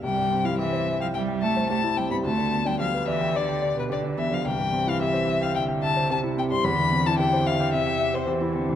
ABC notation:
X:1
M:4/4
L:1/16
Q:1/4=109
K:C
V:1 name="Violin"
g3 f e3 f g2 a2 a2 g b | a3 g f2 e2 d3 B d2 e f | g3 f e3 f g2 a2 a2 g c' | b3 a g2 f2 e3 c z4 |]
V:2 name="Grand piano"
C,, G,, C E G c e g e g e c G E C G,, | D,, D, B, D G B d g d g d B G D B, D, | C,, G,, C E G c e g e g e c G E C G,, | E,, E, C E G c e g e g e c G E C E, |]
V:3 name="Cello" clef=bass
G,3 F, E,3 F, G,2 A,2 A,2 G, B, | A,3 G, F,2 E,2 D,3 B,, D,2 E, F, | E,8 D,4 C,4 | D,8 C,4 E,2 D,2 |]